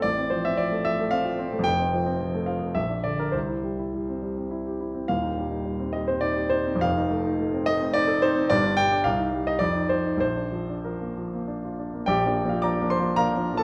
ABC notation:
X:1
M:3/4
L:1/16
Q:1/4=107
K:F
V:1 name="Grand piano"
d2 c e d2 e2 f4 | g6 f2 e2 d B | c8- c2 z2 | [K:Bb] f6 e c d2 c2 |
f6 e2 d2 c2 | d2 g2 f3 e d2 c2 | c4 B6 z2 | [Gdg]3 [Ff] [dbd']2 [cc']2 [Bfb]3 [Aa] |]
V:2 name="Grand piano"
A,,, C F, C F, A, F, A, C F C A, | [F,,,F,,] C F, C F, A, F, A, B,,, D D, D | C,, E G, E G, C G, C E G E C | [K:Bb] [E,,,E,,] E G, E G, C G, C E G E C |
[F,,,F,,] E A, E A, C A, C E A E C | [G,,,G,,] D G, D C,, E G, E F,, E F, E | B,,, D F, D F, B, F, B, D F D B, | (3B,,,2 [F,B,D]2 [F,B,D]2 (3[F,B,D]2 [F,B,D]2 [F,B,D]2 (3[F,B,D]2 [F,B,D]2 [F,B,D]2 |]